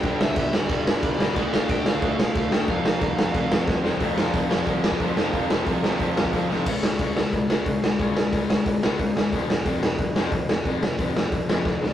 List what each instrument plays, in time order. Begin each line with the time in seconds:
Already playing: lead electric guitar G5
0.03 picked electric bass G1, overdriven electric guitar G2 D3 G3, kick, crash
0.21 picked electric bass D2, lead electric guitar E5, snare
0.36 picked electric bass G1, kick, crash
0.53 picked electric bass G1, lead electric guitar D5, snare
0.69 picked electric bass G1, overdriven electric guitar G2 D3 G3, kick, crash
0.87 picked electric bass G1, snare
1.03 picked electric bass G1, lead electric guitar D5, kick, crash
1.19 picked electric bass G1, overdriven electric guitar G2 D3 G3, lead electric guitar D5, snare
1.35 picked electric bass D2, overdriven electric guitar D3 A3 D4, kick, crash
1.52 lead electric guitar F5, snare
1.69 picked electric bass C3, lead electric guitar G5, kick, crash
1.86 picked electric bass D2, lead electric guitar F5, snare
2.02 picked electric bass D2, overdriven electric guitar D3 A3 D4, kick, crash
2.19 picked electric bass D2, snare
2.35 picked electric bass D2, lead electric guitar F5, kick, crash
2.51 overdriven electric guitar D3 A3 D4, lead electric guitar G5, snare
2.67 picked electric bass F1, overdriven electric guitar F2 C3 F3, lead electric guitar F5, kick, crash
2.85 picked electric bass C2, snare
3.01 picked electric bass F1, kick, crash
3.17 picked electric bass F1, snare
3.33 picked electric bass F1, overdriven electric guitar F2 C3 F3, kick, crash
3.51 picked electric bass F1, snare
3.68 picked electric bass F1, kick, snare
3.84 picked electric bass F1, overdriven electric guitar F2 C3 F3, snare
4.00 picked electric bass F1, overdriven electric guitar F2 C3 F3, kick, open hi-hat
4.16 picked electric bass F1, overdriven electric guitar F2 C3 F3, snare
4.34 picked electric bass F1, overdriven electric guitar F2 C3 F3, kick, open hi-hat
4.51 picked electric bass F1, overdriven electric guitar F2 C3 F3, snare
4.66 picked electric bass D2, overdriven electric guitar F2 C3 F3, kick, open hi-hat
4.84 overdriven electric guitar F2 C3 F3, snare
4.92 kick
5.00 picked electric bass F1, overdriven electric guitar F2 C3 F3, kick, open hi-hat
5.17 picked electric bass F1, overdriven electric guitar F2 C3 F3, snare
5.33 picked electric bass F1, overdriven electric guitar F2 C3 F3, kick, open hi-hat
5.50 picked electric bass F1, overdriven electric guitar F2 C3 F3, snare
5.66 picked electric bass C2, overdriven electric guitar F2 C3 F3, kick, open hi-hat
5.84 overdriven electric guitar F2 C3 F3, snare
6.00 picked electric bass F1, overdriven electric guitar F2 C3 F3, kick, open hi-hat
6.17 picked electric bass F1, overdriven electric guitar F2 C3 F3, snare
6.25 kick
6.33 picked electric bass F1, overdriven electric guitar F2 C3 F3, kick, open hi-hat
6.50 picked electric bass C2, overdriven electric guitar F2 C3 F3, snare
6.66 picked electric bass C#2, overdriven electric guitar C#3 G#3 C#4, kick, crash
6.83 picked electric bass C#2, overdriven electric guitar C#3 G#3, snare
6.99 picked electric bass C#2, overdriven electric guitar C#3 G#3 C#4, kick, open hi-hat
7.17 picked electric bass C#2, overdriven electric guitar C#3 G#3, snare
7.33 picked electric bass C#2, overdriven electric guitar C#3 G#3, kick, open hi-hat
7.50 picked electric bass C#2, overdriven electric guitar C#3 G#3 C#4, snare
7.66 picked electric bass C#3, overdriven electric guitar C#3 G#3, kick, open hi-hat
7.84 picked electric bass C#2, overdriven electric guitar C#3 G#3, snare
7.99 picked electric bass C#2, overdriven electric guitar C#3 G#3 C#4, kick, open hi-hat
8.16 picked electric bass C#2, overdriven electric guitar C#3 G#3, snare
8.33 picked electric bass C#2, overdriven electric guitar C#3 G#3 C#4, kick, open hi-hat
8.50 picked electric bass C#2, overdriven electric guitar C#3 G#3, snare
8.66 picked electric bass C#2, overdriven electric guitar C#3 G#3, kick, open hi-hat
8.83 picked electric bass C#2, overdriven electric guitar C#3 G#3 C#4, snare
8.99 picked electric bass C#3, overdriven electric guitar C#3 G#3, kick, open hi-hat
9.16 picked electric bass E2, overdriven electric guitar C#3 G#3, snare
9.33 picked electric bass F1, overdriven electric guitar F2 C3 F3, kick, open hi-hat
9.50 picked electric bass F1, overdriven electric guitar F2 C3, snare
9.66 picked electric bass F1, overdriven electric guitar F2 C3 F3, kick, open hi-hat
9.82 picked electric bass F1, overdriven electric guitar F2 C3, snare
9.99 picked electric bass F1, overdriven electric guitar F2 C3, kick, open hi-hat
10.16 picked electric bass F1, overdriven electric guitar F2 C3 F3, snare
10.32 picked electric bass F2, overdriven electric guitar F2 C3, kick, open hi-hat
10.49 picked electric bass F1, overdriven electric guitar F2 C3, snare
10.65 picked electric bass F1, overdriven electric guitar F2 C3 F3, kick, open hi-hat
10.82 picked electric bass F1, overdriven electric guitar F2 C3, snare
10.99 picked electric bass F1, overdriven electric guitar F2 C3 F3, kick, open hi-hat
11.17 picked electric bass F1, overdriven electric guitar F2 C3, snare
11.32 picked electric bass F1, overdriven electric guitar F2 C3, kick, open hi-hat
11.48 picked electric bass F1, overdriven electric guitar F2 C3 F3, snare
11.65 picked electric bass F2, overdriven electric guitar F2 C3, kick, snare
11.82 picked electric bass D2, overdriven electric guitar F2 C3, snare